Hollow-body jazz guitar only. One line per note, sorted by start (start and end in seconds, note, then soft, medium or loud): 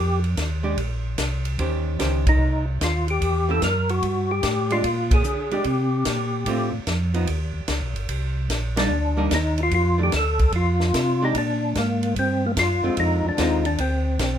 0.63 0.76 G#3 medium
0.63 0.76 D4 medium
0.63 0.76 G4 medium
1.59 1.98 D#3 soft
1.59 1.98 C#4 medium
1.59 1.98 G4 medium
1.59 1.98 C5 medium
1.99 2.24 D#3 medium
1.99 2.24 C#4 medium
1.99 2.24 G4 medium
1.99 2.24 C5 medium
3.49 3.61 E3 medium
3.49 3.60 A#3 medium
3.49 3.61 C#4 medium
3.49 3.61 G4 medium
4.71 4.82 G#3 medium
4.71 4.83 D4 medium
4.71 4.83 G4 medium
5.52 5.64 G#3 medium
5.52 5.64 D4 medium
5.52 5.64 G4 medium
6.47 6.71 D3 medium
6.47 6.71 A3 medium
6.47 6.72 C4 medium
6.47 6.72 F4 medium
7.14 7.26 F3 medium
7.14 7.26 B3 medium
7.14 7.27 D#4 medium
8.76 8.89 G3 medium
8.76 8.89 A#3 medium
8.76 8.89 D#4 medium
9.17 9.29 G3 medium
9.17 9.30 A#3 medium
9.17 9.30 D#4 medium
9.98 10.11 D#3 medium
9.98 10.11 A3 soft
9.98 10.11 D4 soft
11.22 11.34 G#3 medium
11.22 11.34 D4 medium
11.22 11.34 G4 medium
12.83 13.35 D3 medium
12.83 13.36 G#3 medium
12.83 13.35 C4 medium
12.83 13.36 F4 medium
13.37 13.62 D3 medium
13.37 13.63 G#3 medium
13.37 13.63 C4 medium
13.37 13.63 F4 medium